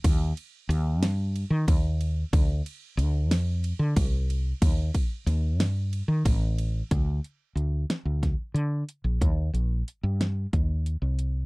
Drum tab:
RD |xxxxxxx|xxxxxxx|xxxxxxx|-------|
HH |-------|-------|-------|xxxxxxx|
SD |---o---|---o---|--oo-o-|---oo--|
BD |o----o-|o----o-|oo---o-|o---o--|

RD |-------|
HH |xxxxxxx|
SD |---o---|
BD |o---o--|